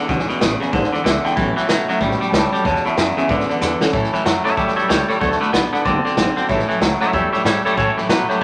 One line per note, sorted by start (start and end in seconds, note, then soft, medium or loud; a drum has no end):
0.07 0.28 B1 medium
0.07 0.26 E2 medium
0.07 0.27 B2 medium
0.07 0.28 E3 loud
0.07 0.32 F#3 medium
0.07 0.32 G#3 medium
0.07 0.29 G#3 medium
0.07 0.29 B3 loud
0.07 0.32 C#4 medium
0.07 0.28 C#4 loud
0.07 0.27 G#4 loud
0.07 kick loud
0.07 snare soft
0.19 snare soft
0.28 0.40 E2 medium
0.28 0.40 B2 medium
0.28 0.39 B3 medium
0.28 0.41 C#4 medium
0.28 0.41 G#4 medium
0.28 muted upright bass stroke medium
0.28 snare soft
0.39 0.60 A1 medium
0.39 0.59 E2 medium
0.39 0.59 C#3 medium
0.39 0.60 G#3 medium
0.39 0.60 B3 medium
0.39 0.61 C#4 medium
0.39 0.58 G#4 medium
0.39 snare loud
0.39 hi-hat pedal medium
0.59 0.71 E2 medium
0.59 0.72 C#3 medium
0.59 0.73 B3 medium
0.59 0.73 C#4 medium
0.59 0.72 G#4 medium
0.59 muted upright bass stroke medium
0.59 snare soft
0.72 0.92 G#1 medium
0.72 0.90 E2 medium
0.72 0.91 D3 loud
0.72 0.92 E3 medium
0.72 0.93 G#3 medium
0.72 0.93 B3 medium
0.72 0.93 C#4 medium
0.72 0.91 G#4 medium
0.72 0.93 C5 loud
0.72 kick loud
0.72 snare soft
0.83 snare soft
0.92 1.03 E2 medium
0.92 1.03 D3 medium
0.92 1.05 B3 soft
0.92 1.06 C#4 soft
0.92 1.05 G#4 soft
0.92 1.05 D5 medium
0.92 muted upright bass stroke medium
0.92 snare soft
1.04 1.24 C#2 medium
1.04 1.22 E2 loud
1.04 1.22 D3 loud
1.04 1.24 G#3 medium
1.04 1.25 B3 medium
1.04 1.24 C#4 medium
1.04 1.25 E5 loud
1.04 snare loud
1.04 hi-hat pedal loud
1.08 1.22 G#4 medium
1.21 1.35 E2 medium
1.21 1.35 D3 medium
1.21 1.36 G#4 medium
1.21 1.23 F#5 medium
1.21 1.56 G5 loud
1.25 1.38 B3 soft
1.25 1.37 C#4 medium
1.25 snare soft
1.36 1.56 A1 medium
1.36 1.54 A2 medium
1.36 1.57 A2 medium
1.36 1.54 E3 loud
1.36 1.57 E3 medium
1.36 1.86 F#3 medium
1.36 1.57 F#3 medium
1.36 1.57 A3 medium
1.36 1.86 B3 medium
1.36 1.86 C#4 medium
1.36 1.56 C#4 loud
1.36 1.55 F#4 loud
1.36 kick loud
1.36 snare soft
1.56 1.68 A2 medium
1.56 1.68 E3 medium
1.56 1.67 F#3 soft
1.56 1.68 A3 medium
1.56 1.69 C#4 medium
1.56 1.69 F#4 medium
1.56 1.68 E5 medium
1.56 muted upright bass stroke medium
1.56 snare soft
1.68 1.87 B1 loud
1.68 1.87 A2 medium
1.68 1.88 F#3 medium
1.68 1.87 F#3 medium
1.68 1.89 A3 medium
1.68 1.88 C#4 medium
1.68 1.88 E5 medium
1.68 snare loud
1.68 hi-hat pedal medium
1.86 1.99 A2 medium
1.86 2.00 F#3 medium
1.86 2.00 C#4 medium
1.86 2.00 F#4 medium
1.86 1.87 D#5 medium
1.86 muted upright bass stroke soft
1.86 snare soft
1.90 1.99 F#3 medium
1.90 2.00 A3 medium
1.90 2.20 E5 loud
1.99 2.20 A1 medium
1.99 2.20 A2 medium
1.99 2.18 A2 medium
1.99 2.20 E3 medium
1.99 2.20 F#3 loud
1.99 2.18 F#3 soft
1.99 2.19 G3 loud
1.99 2.20 A3 medium
1.99 2.19 B3 soft
1.99 2.19 C#4 medium
1.99 2.19 C#4 loud
1.99 2.18 F#4 medium
1.99 kick loud
1.99 snare soft
2.11 snare soft
2.19 2.32 A2 medium
2.19 2.29 F#3 soft
2.19 2.32 G3 medium
2.19 2.31 A3 soft
2.19 2.31 C#4 soft
2.19 2.32 F#4 soft
2.19 snare soft
2.30 2.52 C#2 loud
2.30 2.51 A2 medium
2.30 2.51 F#3 medium
2.30 2.52 A3 medium
2.30 2.52 C#4 medium
2.30 2.51 C#5 medium
2.30 2.32 G#5 medium
2.30 snare loud
2.30 hi-hat pedal loud
2.34 2.51 G3 medium
2.34 2.51 F#4 medium
2.34 2.51 A5 loud
2.52 2.64 A2 medium
2.52 2.64 F#3 soft
2.52 2.64 G3 loud
2.52 2.64 A3 medium
2.52 2.64 C#4 soft
2.52 2.65 F#4 medium
2.52 2.64 C#5 medium
2.52 2.64 A5 loud
2.52 snare soft
2.63 2.84 E2 medium
2.63 2.83 E2 medium
2.63 2.83 B2 loud
2.63 2.84 E3 loud
2.63 2.84 G#3 loud
2.63 2.84 B3 medium
2.63 2.84 C#4 medium
2.63 2.82 G#4 loud
2.63 2.83 C#5 loud
2.63 2.85 A5 loud
2.63 kick loud
2.63 snare soft
2.75 snare soft
2.83 2.96 E2 medium
2.83 2.96 B2 loud
2.83 2.96 B3 soft
2.83 2.97 C#4 medium
2.83 2.96 G#4 medium
2.83 2.97 E5 medium
2.83 muted upright bass stroke medium
2.83 snare soft
2.96 3.15 E2 loud
2.96 3.16 F#2 medium
2.96 3.15 C#3 medium
2.96 3.16 G#3 medium
2.96 3.17 B3 medium
2.96 3.17 C#4 medium
2.96 3.16 G#4 medium
2.96 3.15 G#4 medium
2.96 3.17 E5 medium
2.96 snare loud
2.96 hi-hat pedal loud
3.16 3.28 E2 medium
3.16 3.28 C#3 medium
3.16 3.58 F#3 medium
3.16 3.59 G#3 medium
3.16 3.28 B3 soft
3.16 3.59 C#4 medium
3.16 3.29 C#4 medium
3.16 3.29 G#4 medium
3.16 3.29 E5 loud
3.16 muted upright bass stroke medium
3.16 snare soft
3.28 3.47 E2 medium
3.28 3.48 G#2 medium
3.28 3.47 D3 loud
3.28 3.48 E3 medium
3.28 3.49 G#3 medium
3.28 3.49 B3 loud
3.28 3.49 C#4 loud
3.28 3.46 G#4 medium
3.28 3.48 B4 medium
3.28 3.49 D5 loud
3.28 kick loud
3.28 snare soft
3.40 snare soft
3.48 3.60 E2 medium
3.48 3.60 D3 medium
3.48 3.61 B3 soft
3.48 3.62 C#4 soft
3.48 3.60 G#4 soft
3.48 3.61 B4 medium
3.48 3.61 D5 medium
3.48 muted upright bass stroke medium
3.48 snare soft
3.61 3.79 E2 medium
3.61 3.80 E2 loud
3.61 3.79 D3 loud
3.61 3.81 G#3 medium
3.61 3.81 B3 medium
3.61 3.81 C#4 medium
3.61 3.80 G#4 medium
3.61 3.80 B4 medium
3.61 3.81 D5 loud
3.61 snare medium
3.61 hi-hat pedal loud
3.81 3.92 E2 medium
3.81 3.92 D3 medium
3.81 3.94 B3 soft
3.81 3.93 C#4 loud
3.81 3.94 C#4 medium
3.81 3.93 G#4 medium
3.81 3.94 A4 loud
3.81 muted upright bass stroke medium
3.81 snare loud
3.92 4.13 A2 medium
3.92 4.11 A2 medium
3.92 4.12 A2 medium
3.92 4.13 E3 medium
3.92 4.11 E3 medium
3.92 4.13 F#3 medium
3.92 4.13 A3 medium
3.92 4.13 C#4 medium
3.92 4.11 A4 loud
3.92 4.04 C#5 loud
3.92 4.04 E5 medium
3.92 4.05 A5 loud
3.92 kick loud
3.92 snare soft
4.04 snare soft
4.12 4.24 A2 medium
4.12 4.24 E3 medium
4.12 4.24 A3 medium
4.12 4.26 C#4 medium
4.12 4.25 A4 medium
4.12 4.20 C#5 medium
4.12 4.20 E5 medium
4.12 4.20 B5 loud
4.12 muted upright bass stroke medium
4.12 snare soft
4.16 4.23 F#3 medium
4.24 4.44 F#2 medium
4.24 4.43 A2 medium
4.24 4.44 F#3 medium
4.24 4.43 F#3 medium
4.24 4.45 A3 medium
4.24 4.45 C#4 medium
4.24 4.37 C#5 medium
4.24 4.37 E5 medium
4.24 4.37 G#5 medium
4.24 snare loud
4.24 hi-hat pedal loud
4.28 4.43 A4 medium
4.44 4.56 A2 medium
4.44 4.56 F#3 medium
4.44 4.57 A3 medium
4.44 4.58 C#4 medium
4.44 4.57 A4 medium
4.44 4.52 C#5 loud
4.44 4.56 C#5 medium
4.44 4.52 E5 medium
4.44 4.56 E5 loud
4.44 4.52 A5 loud
4.44 muted upright bass stroke medium
4.44 snare soft
4.48 4.57 F#3 medium
4.57 4.75 E2 medium
4.57 4.77 A2 medium
4.57 4.75 A2 medium
4.57 4.77 E3 medium
4.57 4.77 F#3 medium
4.57 4.75 G3 medium
4.57 4.77 A3 medium
4.57 4.76 C#4 medium
4.57 4.75 C#5 medium
4.57 4.69 C#5 medium
4.57 4.69 E5 medium
4.57 4.75 E5 medium
4.57 4.69 G#5 loud
4.57 kick loud
4.57 snare soft
4.68 snare soft
4.76 4.87 A2 medium
4.76 4.87 F#3 soft
4.76 4.88 G3 medium
4.76 4.88 A3 soft
4.76 4.89 C#4 soft
4.76 4.89 A4 soft
4.76 4.84 C#5 medium
4.76 4.88 C#5 medium
4.76 4.89 E5 medium
4.76 4.84 F#5 medium
4.76 muted upright bass stroke soft
4.76 snare soft
4.88 5.08 C#2 loud
4.88 5.07 A2 medium
4.88 5.08 F#3 medium
4.88 5.07 G3 medium
4.88 5.09 A3 medium
4.88 5.07 A4 medium
4.88 5.01 C#5 medium
4.88 5.08 C#5 medium
4.88 5.01 E5 medium
4.88 5.01 A5 medium
4.88 snare loud
4.88 hi-hat pedal medium
5.07 5.20 A2 medium
5.07 5.20 F#3 soft
5.07 5.20 G3 medium
5.07 5.21 A3 soft
5.07 5.21 C#4 medium
5.07 5.20 A4 medium
5.07 5.16 C#5 medium
5.07 5.21 C#5 medium
5.07 5.16 E5 medium
5.07 5.16 A5 medium
5.07 muted upright bass stroke medium
5.07 snare soft
5.20 5.40 D2 medium
5.20 5.38 D3 medium
5.20 5.41 D3 medium
5.20 5.41 F#3 medium
5.20 5.39 A3 loud
5.20 5.41 B3 medium
5.20 5.40 F#4 medium
5.20 5.40 A4 medium
5.20 5.39 A4 medium
5.20 5.41 C#5 medium
5.20 5.33 D5 loud
5.20 5.33 F#5 medium
5.20 5.33 A5 loud
5.20 kick loud
5.20 snare soft
5.31 snare soft
5.40 5.52 D3 medium
5.40 5.52 A3 medium
5.40 5.54 B3 soft
5.40 5.51 D4 medium
5.40 5.53 F#4 medium
5.40 5.53 A4 medium
5.40 5.52 B4 medium
5.40 5.48 F#5 medium
5.40 5.49 A5 medium
5.40 muted upright bass stroke medium
5.40 snare soft
5.53 5.72 B1 medium
5.53 5.71 D3 medium
5.53 5.73 F#3 medium
5.53 5.71 B3 medium
5.53 5.74 B3 medium
5.53 5.71 D4 medium
5.53 5.73 F#4 medium
5.53 5.72 B4 medium
5.53 5.65 D5 medium
5.53 snare loud
5.53 hi-hat pedal medium
5.57 5.71 A4 medium
5.73 5.84 D3 medium
5.73 5.84 B3 medium
5.73 5.85 B3 medium
5.73 5.84 D4 medium
5.73 5.86 F#4 medium
5.73 5.85 A4 medium
5.73 5.85 B4 medium
5.73 5.80 D5 loud
5.73 5.80 F#5 medium
5.73 5.81 A5 loud
5.73 muted upright bass stroke medium
5.73 snare soft
5.85 6.04 F#1 loud
5.85 6.05 D3 medium
5.85 6.03 D3 medium
5.85 6.05 F#3 medium
5.85 6.05 B3 medium
5.85 6.03 C4 loud
5.85 6.05 F#4 medium
5.85 6.03 A4 medium
5.85 6.47 D5 medium
5.85 5.97 D5 loud
5.85 5.97 F#5 medium
5.85 5.98 A5 loud
5.85 kick loud
5.85 snare soft
6.04 6.16 D3 medium
6.04 6.17 B3 soft
6.04 6.16 C4 medium
6.04 6.18 F#4 soft
6.04 6.17 A4 medium
6.04 6.12 D5 medium
6.04 6.12 F#5 medium
6.04 muted upright bass stroke medium
6.04 snare soft
6.17 6.36 G#1 loud
6.17 6.35 D3 medium
6.17 6.37 F#3 medium
6.17 6.37 B3 medium
6.17 6.35 C4 medium
6.17 6.37 F#4 medium
6.17 6.35 A4 medium
6.17 6.29 D5 medium
6.17 6.29 F#5 medium
6.17 6.29 G#5 medium
6.17 snare loud
6.17 hi-hat pedal medium
6.36 6.48 D3 medium
6.36 6.50 B3 medium
6.36 6.48 C4 medium
6.36 6.50 F#4 medium
6.36 6.49 A4 medium
6.36 6.44 D5 loud
6.36 6.44 F#5 medium
6.36 6.44 A5 loud
6.36 muted upright bass stroke medium
6.36 snare soft
6.49 6.68 A1 medium
6.49 6.67 A2 medium
6.49 6.69 A2 medium
6.49 6.67 E3 medium
6.49 6.69 E3 loud
6.49 6.69 F#3 loud
6.49 6.69 A3 loud
6.49 6.68 C#4 loud
6.49 6.67 A4 loud
6.49 6.61 C#5 loud
6.49 6.61 E5 loud
6.49 6.61 A5 loud
6.49 kick loud
6.49 snare soft
6.59 snare soft
6.68 6.80 A2 medium
6.68 6.80 E3 loud
6.68 6.79 F#3 medium
6.68 6.80 A3 medium
6.68 6.81 C#4 medium
6.68 6.81 A4 medium
6.68 6.76 C#5 medium
6.68 6.76 E5 medium
6.68 muted upright bass stroke medium
6.68 snare soft
6.80 7.00 C#2 loud
6.80 6.99 A2 medium
6.80 7.00 F#3 medium
6.80 6.99 F#3 medium
6.80 7.01 C#4 medium
6.80 6.93 C#5 medium
6.80 6.93 E5 medium
6.80 6.93 G#5 medium
6.80 snare loud
6.80 hi-hat pedal medium
7.00 7.12 A2 medium
7.00 7.12 F#3 medium
7.00 7.13 F#3 medium
7.00 7.13 A3 medium
7.00 7.13 C#4 medium
7.00 7.13 A4 medium
7.00 7.08 C#5 loud
7.00 7.12 C#5 medium
7.00 7.08 E5 medium
7.00 7.13 E5 medium
7.00 7.08 F#5 loud
7.00 snare soft
7.13 7.32 E2 medium
7.13 7.33 A2 medium
7.13 7.31 A2 medium
7.13 7.33 E3 medium
7.13 7.33 F#3 medium
7.13 7.31 G3 medium
7.13 7.33 A3 medium
7.13 7.32 C#4 medium
7.13 7.31 A4 medium
7.13 7.25 C#5 medium
7.13 7.32 C#5 medium
7.13 7.25 E5 medium
7.13 7.32 E5 medium
7.13 7.25 A5 loud
7.13 kick loud
7.13 snare soft
7.32 7.44 A2 medium
7.32 7.43 F#3 soft
7.32 7.44 G3 medium
7.32 7.44 A3 soft
7.32 7.45 C#4 soft
7.32 7.45 A4 soft
7.32 7.44 C#5 medium
7.32 7.40 C#5 medium
7.32 7.40 E5 medium
7.32 7.45 E5 medium
7.32 muted upright bass stroke medium
7.32 snare soft
7.44 7.63 G#2 loud
7.44 7.63 A2 medium
7.44 7.64 F#3 medium
7.44 7.63 G3 loud
7.44 7.65 A3 medium
7.44 7.65 C#4 medium
7.44 7.64 A4 medium
7.44 7.57 C#5 medium
7.44 7.64 C#5 medium
7.44 7.57 E5 medium
7.44 7.57 A5 medium
7.44 snare loud
7.44 hi-hat pedal medium
7.64 7.76 A2 medium
7.64 7.78 F#3 medium
7.64 7.77 G3 loud
7.64 7.78 A3 medium
7.64 7.78 C#4 medium
7.64 7.77 A4 medium
7.64 7.76 A4 medium
7.64 7.72 C#5 medium
7.64 7.76 C#5 medium
7.64 7.72 E5 medium
7.64 7.72 A5 loud
7.64 snare soft
7.77 7.95 A2 medium
7.77 7.97 A2 medium
7.77 7.95 E3 loud
7.77 7.98 E3 medium
7.77 7.98 F#3 medium
7.77 7.98 A3 medium
7.77 7.97 C#4 medium
7.77 7.97 A4 medium
7.77 7.96 A4 medium
7.77 7.89 C#5 loud
7.77 7.98 C#5 medium
7.77 7.89 E5 medium
7.77 7.89 A5 loud
7.77 kick loud
7.77 snare soft
7.96 8.08 A2 medium
7.96 8.08 E3 medium
7.96 8.11 A3 medium
7.96 8.10 C#4 medium
7.96 8.08 G4 medium
7.96 8.09 A4 medium
7.96 8.09 B4 loud
7.96 8.04 E5 medium
7.96 snare soft
8.01 8.09 F#3 soft
8.08 8.27 A2 medium
8.08 8.28 B2 medium
8.08 8.27 F#3 loud
8.08 8.29 F#3 medium
8.08 8.30 A3 medium
8.08 8.29 C#4 medium
8.08 8.28 G4 medium
8.08 8.29 B4 medium
8.08 8.21 C#5 medium
8.08 8.21 E5 medium
8.08 8.21 A5 medium
8.08 snare loud
8.08 hi-hat pedal medium
8.14 8.28 A4 medium
8.28 8.40 A2 medium
8.28 8.40 F#3 medium
8.28 8.42 A3 medium
8.28 8.42 C#4 medium
8.28 8.40 G4 medium
8.28 8.41 A4 medium
8.28 8.41 B4 medium
8.28 8.36 C#5 loud
8.28 8.36 E5 medium
8.28 8.36 A5 loud
8.28 muted upright bass stroke medium
8.28 snare soft
8.33 8.42 F#3 soft